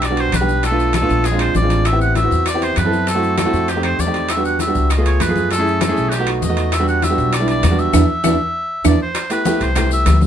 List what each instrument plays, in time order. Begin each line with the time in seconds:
Already playing: upright bass B1
0.02 oboe D5, high bongo, high conga, high timbale, claves, maracas
0.10 grand piano G3 B3 D4 F#4
0.17 oboe C5, high bongo, high conga, high timbale, maracas
0.32 upright bass B1, oboe B4, high bongo, low bongo, high conga, high timbale, claves, maracas
0.41 grand piano G3 B3 D4 G4
0.49 high bongo, maracas
0.63 oboe A4, high bongo, high conga, high timbale, maracas
0.71 grand piano A3 B3 D4 F4
0.79 high conga, maracas
0.93 oboe A4, high bongo, high conga, high timbale, claves, maracas
1.01 grand piano A3 B3 D4 F4
1.09 upright bass A#1, high bongo, high conga, maracas
1.24 oboe G#4, high bongo, high conga, high timbale, maracas
1.31 grand piano G#3 C4 D4 F4
1.39 oboe C5, high bongo, high conga, high timbale, claves, maracas
1.55 upright bass A1, oboe D5, high bongo, low bongo, high conga, low timbale, maracas
1.62 grand piano G#3 C4 D4 F4
1.70 high bongo, high conga, high timbale, maracas
1.85 oboe E5, high bongo, high conga, high timbale, claves, maracas
1.92 grand piano B3 C4 E4 G4
2.01 oboe F#5, high conga, maracas
2.15 oboe E5, high bongo, high conga, high timbale, maracas
2.23 grand piano B3 C4 E4 F#4
2.31 upright bass E2, high bongo, high conga, maracas
2.46 oboe D5, high bongo, high conga, high timbale, claves, maracas
2.54 grand piano B3 C4 E4 G4
2.62 oboe C5, high bongo, high conga, high timbale, maracas
2.76 upright bass F#2, oboe B4, high bongo, low bongo, high conga, high timbale, claves, maracas
2.85 grand piano B3 C4 E4 A4
2.92 high bongo, maracas
3.07 oboe A4, high bongo, high conga, high timbale, maracas
3.15 grand piano A3 C4 E4 F#4
3.23 high conga, maracas
3.38 oboe A4, high bongo, high conga, high timbale, claves, maracas
3.45 grand piano A3 C4 E4 F#4
3.53 upright bass F2, high bongo, high conga, maracas
3.68 oboe G4, high bongo, high conga, high timbale, maracas
3.76 grand piano A3 C4 D#4 G4
3.83 oboe C5, high bongo, high conga, high timbale, claves, maracas
3.99 upright bass E2, oboe D5, high bongo, low bongo, high conga, maracas
4.06 grand piano A3 C4 D#4 G4
4.14 high bongo, high conga, high timbale, maracas
4.29 oboe E5, high bongo, high conga, high timbale, claves, maracas
4.36 grand piano G3 B3 D4 F#4
4.44 oboe F#5, high conga, maracas
4.59 oboe E5, high bongo, high conga, high timbale, maracas
4.67 grand piano G3 B3 D4 F#4
4.75 upright bass C#2, high bongo, high conga, maracas
4.90 oboe D#5, high bongo, high conga, high timbale, claves, maracas
4.97 grand piano A3 B3 F4 G#4
5.05 oboe C#5, high bongo, high conga, high timbale, maracas
5.20 upright bass F#2, oboe B4, high bongo, low bongo, high conga, high timbale, low timbale, claves, maracas
5.28 grand piano A3 B3 F4 G#4
5.36 high bongo, high conga, maracas
5.51 oboe A4, high bongo, high conga, high timbale, maracas
5.58 grand piano A3 C#4 E4 G#4
5.66 high conga, maracas
5.81 oboe A4, high bongo, high conga, high timbale, claves, maracas
5.88 grand piano A3 C#4 E4 G#4
5.96 upright bass B1, high bongo, high conga, maracas
6.09 oboe F#4, high bongo, high conga, high timbale, maracas
6.14 oboe G4
6.19 grand piano A3 B3 D#4 F#4
6.27 high bongo, high conga, high timbale, claves, maracas
6.42 upright bass E2, oboe D#5, high bongo, low bongo, high conga, maracas
6.49 grand piano A3 B3 D#4 F#4
6.57 high bongo, high timbale, maracas
6.72 oboe E5, high bongo, high conga, high timbale, claves, maracas
6.79 grand piano G3 B3 D4 F#4
6.88 oboe F#5, high conga, maracas
7.02 oboe E5, high bongo, high conga, high timbale, maracas
7.10 grand piano G3 B3 D4 F#4
7.18 upright bass B1, high bongo, high conga, maracas
7.33 oboe D5, high bongo, high conga, high timbale, claves, maracas
7.39 grand piano G3 B3 D4 E4
7.48 oboe D5, high bongo, high conga, high timbale, maracas
7.63 upright bass E2, high bongo, low bongo, high conga, high timbale, low timbale, claves, maracas
7.70 grand piano G3 B3 D4 F#4
7.79 oboe E5, high bongo, maracas
7.93 upright bass E2, grand piano B3 D4 E4, high bongo, high conga, high timbale, claves, maracas
8.24 upright bass E2, grand piano B3 D4 E4, high bongo, high conga, high timbale, claves, maracas
8.84 upright bass E2, grand piano B3 D4 E4, oboe D5, high bongo, high conga, high timbale, claves, maracas
9.02 oboe C5
9.15 high bongo, high conga, high timbale, claves, maracas
9.30 grand piano A3 B3 E4 G4, oboe B4, high conga, high timbale, maracas
9.45 grand piano A3 B3 E4 G4, high bongo, high conga, low timbale, maracas
9.60 upright bass C2, oboe C5, high bongo, high timbale, maracas
9.75 grand piano A3 B3 E4 G4, high bongo, high conga, low conga, high timbale, claves, maracas
9.91 oboe E5, high bongo, high conga, maracas
10.06 upright bass D2, high bongo, low bongo, high conga, high timbale, low timbale, claves, maracas
10.21 high bongo, high conga, maracas